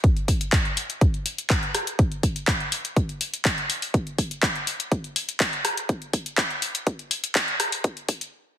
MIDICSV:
0, 0, Header, 1, 2, 480
1, 0, Start_track
1, 0, Tempo, 487805
1, 998, Time_signature, 4, 2, 24, 8
1, 8443, End_track
2, 0, Start_track
2, 0, Title_t, "Drums"
2, 37, Note_on_c, 9, 36, 123
2, 38, Note_on_c, 9, 42, 48
2, 135, Note_off_c, 9, 36, 0
2, 137, Note_off_c, 9, 42, 0
2, 163, Note_on_c, 9, 42, 27
2, 261, Note_off_c, 9, 42, 0
2, 277, Note_on_c, 9, 36, 65
2, 278, Note_on_c, 9, 46, 110
2, 375, Note_off_c, 9, 36, 0
2, 377, Note_off_c, 9, 46, 0
2, 402, Note_on_c, 9, 42, 51
2, 501, Note_off_c, 9, 42, 0
2, 517, Note_on_c, 9, 36, 118
2, 517, Note_on_c, 9, 39, 120
2, 518, Note_on_c, 9, 42, 50
2, 615, Note_off_c, 9, 39, 0
2, 616, Note_off_c, 9, 36, 0
2, 616, Note_off_c, 9, 42, 0
2, 642, Note_on_c, 9, 42, 24
2, 741, Note_off_c, 9, 42, 0
2, 758, Note_on_c, 9, 46, 114
2, 857, Note_off_c, 9, 46, 0
2, 882, Note_on_c, 9, 42, 50
2, 981, Note_off_c, 9, 42, 0
2, 997, Note_on_c, 9, 36, 118
2, 999, Note_on_c, 9, 42, 51
2, 1096, Note_off_c, 9, 36, 0
2, 1097, Note_off_c, 9, 42, 0
2, 1122, Note_on_c, 9, 42, 25
2, 1221, Note_off_c, 9, 42, 0
2, 1237, Note_on_c, 9, 46, 112
2, 1335, Note_off_c, 9, 46, 0
2, 1362, Note_on_c, 9, 42, 50
2, 1460, Note_off_c, 9, 42, 0
2, 1476, Note_on_c, 9, 39, 114
2, 1477, Note_on_c, 9, 36, 110
2, 1477, Note_on_c, 9, 42, 50
2, 1574, Note_off_c, 9, 39, 0
2, 1575, Note_off_c, 9, 42, 0
2, 1576, Note_off_c, 9, 36, 0
2, 1601, Note_on_c, 9, 42, 26
2, 1700, Note_off_c, 9, 42, 0
2, 1717, Note_on_c, 9, 37, 65
2, 1717, Note_on_c, 9, 46, 109
2, 1816, Note_off_c, 9, 37, 0
2, 1816, Note_off_c, 9, 46, 0
2, 1842, Note_on_c, 9, 42, 51
2, 1940, Note_off_c, 9, 42, 0
2, 1957, Note_on_c, 9, 36, 121
2, 1957, Note_on_c, 9, 42, 47
2, 2055, Note_off_c, 9, 42, 0
2, 2056, Note_off_c, 9, 36, 0
2, 2082, Note_on_c, 9, 42, 27
2, 2180, Note_off_c, 9, 42, 0
2, 2197, Note_on_c, 9, 36, 63
2, 2197, Note_on_c, 9, 46, 103
2, 2296, Note_off_c, 9, 36, 0
2, 2296, Note_off_c, 9, 46, 0
2, 2321, Note_on_c, 9, 42, 52
2, 2420, Note_off_c, 9, 42, 0
2, 2436, Note_on_c, 9, 39, 120
2, 2437, Note_on_c, 9, 42, 51
2, 2438, Note_on_c, 9, 36, 111
2, 2535, Note_off_c, 9, 39, 0
2, 2536, Note_off_c, 9, 36, 0
2, 2536, Note_off_c, 9, 42, 0
2, 2562, Note_on_c, 9, 42, 25
2, 2661, Note_off_c, 9, 42, 0
2, 2677, Note_on_c, 9, 46, 115
2, 2776, Note_off_c, 9, 46, 0
2, 2802, Note_on_c, 9, 42, 52
2, 2900, Note_off_c, 9, 42, 0
2, 2917, Note_on_c, 9, 36, 119
2, 2918, Note_on_c, 9, 42, 55
2, 3016, Note_off_c, 9, 36, 0
2, 3016, Note_off_c, 9, 42, 0
2, 3042, Note_on_c, 9, 42, 27
2, 3141, Note_off_c, 9, 42, 0
2, 3157, Note_on_c, 9, 46, 107
2, 3255, Note_off_c, 9, 46, 0
2, 3282, Note_on_c, 9, 42, 52
2, 3380, Note_off_c, 9, 42, 0
2, 3396, Note_on_c, 9, 39, 118
2, 3397, Note_on_c, 9, 42, 54
2, 3398, Note_on_c, 9, 36, 108
2, 3495, Note_off_c, 9, 39, 0
2, 3496, Note_off_c, 9, 36, 0
2, 3496, Note_off_c, 9, 42, 0
2, 3521, Note_on_c, 9, 42, 26
2, 3620, Note_off_c, 9, 42, 0
2, 3637, Note_on_c, 9, 46, 105
2, 3736, Note_off_c, 9, 46, 0
2, 3762, Note_on_c, 9, 46, 56
2, 3860, Note_off_c, 9, 46, 0
2, 3878, Note_on_c, 9, 36, 115
2, 3878, Note_on_c, 9, 42, 49
2, 3976, Note_off_c, 9, 36, 0
2, 3976, Note_off_c, 9, 42, 0
2, 4002, Note_on_c, 9, 42, 28
2, 4101, Note_off_c, 9, 42, 0
2, 4117, Note_on_c, 9, 46, 94
2, 4118, Note_on_c, 9, 36, 61
2, 4216, Note_off_c, 9, 36, 0
2, 4216, Note_off_c, 9, 46, 0
2, 4242, Note_on_c, 9, 42, 53
2, 4341, Note_off_c, 9, 42, 0
2, 4357, Note_on_c, 9, 39, 115
2, 4358, Note_on_c, 9, 36, 117
2, 4358, Note_on_c, 9, 42, 55
2, 4455, Note_off_c, 9, 39, 0
2, 4456, Note_off_c, 9, 36, 0
2, 4456, Note_off_c, 9, 42, 0
2, 4482, Note_on_c, 9, 42, 27
2, 4580, Note_off_c, 9, 42, 0
2, 4597, Note_on_c, 9, 46, 107
2, 4696, Note_off_c, 9, 46, 0
2, 4722, Note_on_c, 9, 42, 56
2, 4821, Note_off_c, 9, 42, 0
2, 4837, Note_on_c, 9, 36, 118
2, 4838, Note_on_c, 9, 42, 56
2, 4936, Note_off_c, 9, 36, 0
2, 4936, Note_off_c, 9, 42, 0
2, 4962, Note_on_c, 9, 42, 27
2, 5060, Note_off_c, 9, 42, 0
2, 5077, Note_on_c, 9, 46, 109
2, 5176, Note_off_c, 9, 46, 0
2, 5202, Note_on_c, 9, 42, 57
2, 5300, Note_off_c, 9, 42, 0
2, 5316, Note_on_c, 9, 39, 117
2, 5317, Note_on_c, 9, 36, 107
2, 5317, Note_on_c, 9, 42, 55
2, 5415, Note_off_c, 9, 36, 0
2, 5415, Note_off_c, 9, 39, 0
2, 5416, Note_off_c, 9, 42, 0
2, 5441, Note_on_c, 9, 42, 28
2, 5539, Note_off_c, 9, 42, 0
2, 5557, Note_on_c, 9, 37, 67
2, 5557, Note_on_c, 9, 46, 107
2, 5655, Note_off_c, 9, 37, 0
2, 5655, Note_off_c, 9, 46, 0
2, 5682, Note_on_c, 9, 42, 51
2, 5780, Note_off_c, 9, 42, 0
2, 5797, Note_on_c, 9, 36, 117
2, 5797, Note_on_c, 9, 42, 52
2, 5895, Note_off_c, 9, 36, 0
2, 5895, Note_off_c, 9, 42, 0
2, 5921, Note_on_c, 9, 42, 29
2, 6019, Note_off_c, 9, 42, 0
2, 6036, Note_on_c, 9, 46, 96
2, 6037, Note_on_c, 9, 36, 62
2, 6135, Note_off_c, 9, 36, 0
2, 6135, Note_off_c, 9, 46, 0
2, 6161, Note_on_c, 9, 42, 58
2, 6259, Note_off_c, 9, 42, 0
2, 6275, Note_on_c, 9, 39, 114
2, 6276, Note_on_c, 9, 42, 54
2, 6277, Note_on_c, 9, 36, 107
2, 6373, Note_off_c, 9, 39, 0
2, 6374, Note_off_c, 9, 42, 0
2, 6375, Note_off_c, 9, 36, 0
2, 6401, Note_on_c, 9, 42, 28
2, 6499, Note_off_c, 9, 42, 0
2, 6516, Note_on_c, 9, 46, 105
2, 6614, Note_off_c, 9, 46, 0
2, 6641, Note_on_c, 9, 42, 57
2, 6739, Note_off_c, 9, 42, 0
2, 6756, Note_on_c, 9, 42, 57
2, 6757, Note_on_c, 9, 36, 115
2, 6855, Note_off_c, 9, 36, 0
2, 6855, Note_off_c, 9, 42, 0
2, 6880, Note_on_c, 9, 42, 29
2, 6979, Note_off_c, 9, 42, 0
2, 6996, Note_on_c, 9, 46, 111
2, 7094, Note_off_c, 9, 46, 0
2, 7121, Note_on_c, 9, 42, 60
2, 7219, Note_off_c, 9, 42, 0
2, 7235, Note_on_c, 9, 39, 127
2, 7236, Note_on_c, 9, 42, 57
2, 7237, Note_on_c, 9, 36, 115
2, 7334, Note_off_c, 9, 39, 0
2, 7335, Note_off_c, 9, 36, 0
2, 7335, Note_off_c, 9, 42, 0
2, 7360, Note_on_c, 9, 42, 29
2, 7458, Note_off_c, 9, 42, 0
2, 7476, Note_on_c, 9, 37, 66
2, 7476, Note_on_c, 9, 46, 111
2, 7575, Note_off_c, 9, 37, 0
2, 7575, Note_off_c, 9, 46, 0
2, 7600, Note_on_c, 9, 46, 59
2, 7699, Note_off_c, 9, 46, 0
2, 7716, Note_on_c, 9, 42, 55
2, 7717, Note_on_c, 9, 36, 116
2, 7814, Note_off_c, 9, 42, 0
2, 7816, Note_off_c, 9, 36, 0
2, 7841, Note_on_c, 9, 42, 30
2, 7939, Note_off_c, 9, 42, 0
2, 7956, Note_on_c, 9, 46, 103
2, 7957, Note_on_c, 9, 36, 62
2, 8054, Note_off_c, 9, 46, 0
2, 8056, Note_off_c, 9, 36, 0
2, 8081, Note_on_c, 9, 42, 59
2, 8179, Note_off_c, 9, 42, 0
2, 8443, End_track
0, 0, End_of_file